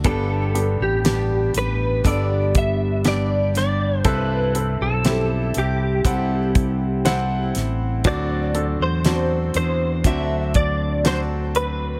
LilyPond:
<<
  \new Staff \with { instrumentName = "Clean electric guitar" } { \time 4/4 \key g \major \tempo 4 = 60 a'8. g'8. b'8 d''8 e''8 d''8 d''8 | b'8. a'8. g'2 r8 | d''8. c''8. c''8 e''8 d''8 c''8 b'8 | }
  \new Staff \with { instrumentName = "Grand piano" } { \time 4/4 \key g \major <b d' g'>8 <b d' g'>8 <b d' g'>4 <b d' a'>4 <b d' g'>4 | <c' e' a'>8 <c' e' a'>8 <c' e' g'>4 <c' e' fis''>4 <c' e' fis''>4 | <c' d' fis'>8 <c' d' a'>8 <c' d' fis'>4 <c' d' fis'>4 <c' d' fis'>4 | }
  \new Staff \with { instrumentName = "Grand piano" } { \clef bass \time 4/4 \key g \major <g, d>4. r2 r8 | g,4. r2 r8 | a,4. r2 r8 | }
  \new Staff \with { instrumentName = "Steel-string acoustic guitar" } { \time 4/4 \key g \major <g, d g b d' g'>4 <g b d' g'>8 <g b d' g'>8 <g, d g b d' g'>4 <g b d' g'>8 <g b d' g'>8 | <c g c' e' a'>4 <g c' e' a'>8 <c' e' a'>8 <c g c' e' a'>4 <g c' e' a'>4 | <d fis c' d' a'>4 <fis c' d' a'>8 <c' d' a'>8 <d fis c' d' a'>4 <fis c' d' a'>4 | }
  \new Staff \with { instrumentName = "Fretless electric bass" } { \clef bass \time 4/4 \key g \major g,,8. a,,8. a,,8 g,,2 | c,8. b,,8. c,8 c,4. a,,8 | d,8. e,8. e,8 d,2 | }
  \new DrumStaff \with { instrumentName = "Drums" } \drummode { \time 4/4 <hh bd>8 hh8 <hh sn>8 hh8 <hh bd>8 <hh bd>8 <hh sn>8 <hh sn>8 | <hh bd>8 hh8 <hh sn>8 hh8 <hh bd>8 <hh bd>8 <hh sn>8 <hh sn>8 | <hh bd>8 hh8 <hh sn>8 hh8 <hh bd>8 <hh bd>8 <hh sn>8 hh8 | }
>>